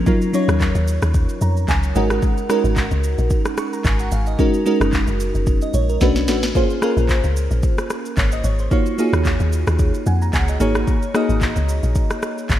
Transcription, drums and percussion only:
0.06 kick loud
0.06 shaker medium
0.21 shaker soft
0.34 shaker loud
0.49 cross-stick loud
0.49 shaker soft
0.60 kick medium
0.60 clap medium
0.60 shaker medium
0.75 shaker medium
0.88 shaker medium
1.02 cross-stick medium
1.02 shaker medium
1.14 kick loud
1.14 shaker medium
1.29 shaker medium
1.41 shaker medium
1.57 shaker medium
1.68 kick medium
1.68 clap medium
1.68 shaker medium
1.83 shaker medium
1.95 shaker medium
2.10 cross-stick loud
2.10 shaker medium
2.22 kick loud
2.22 shaker medium
2.37 shaker medium
2.50 cross-stick loud
2.50 shaker loud
2.65 shaker soft
2.76 kick medium
2.76 clap medium
2.76 shaker medium
2.91 shaker medium
3.04 shaker medium
3.18 shaker medium
3.30 kick loud
3.30 shaker medium
3.45 cross-stick medium
3.45 shaker medium
3.57 cross-stick loud
3.57 shaker medium
3.73 shaker medium
3.85 kick medium
3.85 clap medium
3.85 shaker medium
3.99 shaker medium
4.12 shaker loud
4.27 shaker medium
4.39 kick loud
4.39 shaker medium
4.54 shaker soft
4.66 shaker medium
4.81 cross-stick loud
4.81 shaker medium
4.93 kick medium
4.93 clap medium
4.93 shaker medium
5.07 shaker medium
5.20 shaker medium
5.35 shaker medium
5.47 kick loud
5.47 shaker medium
5.62 shaker medium
5.74 shaker medium
5.89 shaker medium
6.01 kick medium
6.01 snare medium
6.01 shaker medium
6.16 snare medium
6.16 shaker medium
6.28 snare medium
6.28 shaker medium
6.43 snare medium
6.43 shaker medium
6.55 kick loud
6.55 shaker medium
6.70 shaker soft
6.82 cross-stick loud
6.82 shaker medium
6.97 shaker soft
7.09 kick medium
7.09 clap medium
7.09 shaker medium
7.24 shaker medium
7.37 shaker loud
7.51 shaker medium
7.63 kick loud
7.63 shaker medium
7.78 cross-stick medium
7.78 shaker medium
7.90 cross-stick medium
7.90 shaker medium
8.06 shaker medium
8.17 kick medium
8.17 clap medium
8.17 shaker medium
8.32 shaker medium
8.44 shaker medium
8.59 shaker soft
8.71 kick loud
8.71 shaker medium
8.86 shaker soft
8.99 shaker medium
9.13 cross-stick loud
9.13 shaker soft
9.25 kick medium
9.25 clap medium
9.25 shaker medium
9.40 shaker medium
9.53 shaker medium
9.67 cross-stick loud
9.67 shaker medium
9.79 kick loud
9.79 shaker medium
9.94 shaker medium
10.06 shaker medium
10.22 shaker medium
10.33 kick medium
10.33 clap medium
10.33 shaker medium
10.48 shaker medium
10.60 shaker medium
10.75 cross-stick loud
10.75 shaker soft
10.87 kick loud
10.87 shaker medium
11.02 shaker soft
11.15 cross-stick loud
11.15 shaker loud
11.30 shaker soft
11.41 kick medium
11.41 clap medium
11.41 shaker medium
11.56 shaker medium
11.69 shaker loud
11.83 shaker medium
11.95 kick loud
11.95 shaker medium
12.10 cross-stick medium
12.10 shaker medium
12.23 cross-stick medium
12.23 shaker medium
12.38 shaker medium
12.49 kick medium
12.49 clap medium
12.49 shaker medium

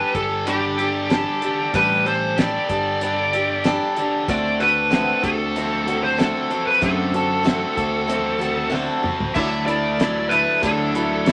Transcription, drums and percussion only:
0.15 kick medium
0.15 closed hi-hat medium
0.47 closed hi-hat medium
0.79 closed hi-hat medium
1.10 snare medium
1.10 closed hi-hat medium
1.42 closed hi-hat medium
1.74 kick loud
1.74 closed hi-hat medium
2.06 closed hi-hat medium
2.38 snare loud
2.38 closed hi-hat medium
2.70 kick medium
2.70 closed hi-hat medium
3.01 closed hi-hat medium
3.33 closed hi-hat medium
3.64 snare loud
3.64 closed hi-hat medium
3.96 closed hi-hat medium
4.28 kick loud
4.28 closed hi-hat medium
4.60 closed hi-hat medium
4.92 snare loud
4.92 closed hi-hat medium
5.23 kick medium
5.23 closed hi-hat medium
5.56 closed hi-hat medium
5.88 closed hi-hat medium
6.19 snare medium
6.19 closed hi-hat medium
6.51 closed hi-hat medium
6.82 kick loud
6.82 closed hi-hat medium
7.14 closed hi-hat medium
7.46 snare loud
7.46 closed hi-hat medium
7.77 kick medium
7.77 closed hi-hat medium
8.09 closed hi-hat medium
8.41 closed hi-hat medium
8.74 snare soft
9.04 mid tom medium
9.20 floor tom medium
9.36 kick loud
9.36 crash loud
9.68 closed hi-hat medium
10.00 snare loud
10.00 closed hi-hat medium
10.31 closed hi-hat medium
10.63 kick medium
10.63 closed hi-hat medium
10.95 closed hi-hat medium
11.26 snare loud
11.26 closed hi-hat medium

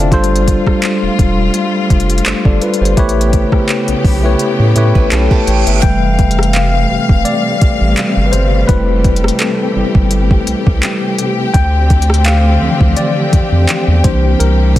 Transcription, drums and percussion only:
0.00 closed hi-hat medium
0.12 kick loud
0.12 closed hi-hat medium
0.24 closed hi-hat medium
0.36 closed hi-hat medium
0.47 kick medium
0.47 closed hi-hat medium
0.67 kick medium
0.67 cross-stick medium
0.82 clap loud
0.82 closed hi-hat medium
1.19 kick loud
1.19 closed hi-hat medium
1.54 closed hi-hat medium
1.90 kick medium
1.90 closed hi-hat medium
2.00 closed hi-hat medium
2.10 closed hi-hat medium
2.18 closed hi-hat medium
2.26 clap loud
2.26 closed hi-hat medium
2.45 kick medium
2.61 closed hi-hat soft
2.61 open hi-hat medium
2.74 closed hi-hat medium
2.85 closed hi-hat medium
2.97 kick loud
2.97 closed hi-hat medium
3.09 closed hi-hat medium
3.21 closed hi-hat medium
3.33 kick loud
3.33 closed hi-hat medium
3.52 kick medium
3.52 cross-stick medium
3.69 clap loud
3.69 closed hi-hat soft
3.88 closed hi-hat medium
4.04 kick loud
4.04 open hi-hat medium
4.39 closed hi-hat medium
4.76 closed hi-hat medium
4.95 kick loud
5.11 clap loud
5.11 closed hi-hat medium
5.31 kick medium
5.47 closed hi-hat medium
5.47 open hi-hat medium
5.67 closed hi-hat medium
5.83 kick loud
5.83 closed hi-hat medium
6.19 kick medium
6.19 closed hi-hat soft
6.31 closed hi-hat medium
6.39 cross-stick medium
6.43 closed hi-hat medium
6.53 clap loud
6.53 closed hi-hat medium
7.09 kick loud
7.25 closed hi-hat medium
7.61 kick loud
7.61 closed hi-hat medium
7.97 clap loud
7.97 closed hi-hat medium
8.33 closed hi-hat medium
8.69 kick loud
8.69 closed hi-hat medium
9.04 kick loud
9.04 closed hi-hat soft
9.16 closed hi-hat medium
9.24 cross-stick medium
9.28 closed hi-hat medium
9.39 clap loud
9.39 closed hi-hat medium
9.95 kick loud
10.11 closed hi-hat medium
10.31 kick medium
10.47 closed hi-hat medium
10.67 kick loud
10.83 clap loud
10.83 closed hi-hat medium
11.18 closed hi-hat medium
11.54 kick loud
11.54 closed hi-hat medium
11.90 kick medium
11.90 closed hi-hat soft
12.02 closed hi-hat medium
12.10 cross-stick medium
12.14 closed hi-hat medium
12.24 clap loud
12.24 closed hi-hat medium
12.81 kick loud
12.97 closed hi-hat medium
13.33 kick medium
13.33 closed hi-hat medium
13.69 clap loud
13.69 closed hi-hat medium
14.04 kick loud
14.04 closed hi-hat medium
14.40 closed hi-hat medium
14.76 kick medium
14.76 closed hi-hat medium

